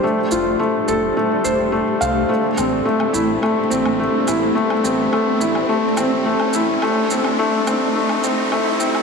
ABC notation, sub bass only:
X:1
M:4/4
L:1/16
Q:1/4=106
K:Am
V:1 name="Sub bass" clef=bass
z2 F,,,2 z2 F,,,2 z2 F,,, F,,,2 z C,,2 | z2 A,,,2 z2 A,,,2 z2 A,,, A,,,2 z A,,,2 | z2 A,,,2 z2 A,,,2 z2 A,,, A,,,2 z A,,,2 | z2 G,,,2 z2 G,,,2 z2 G,,, G,,,2 z G,,,2 |]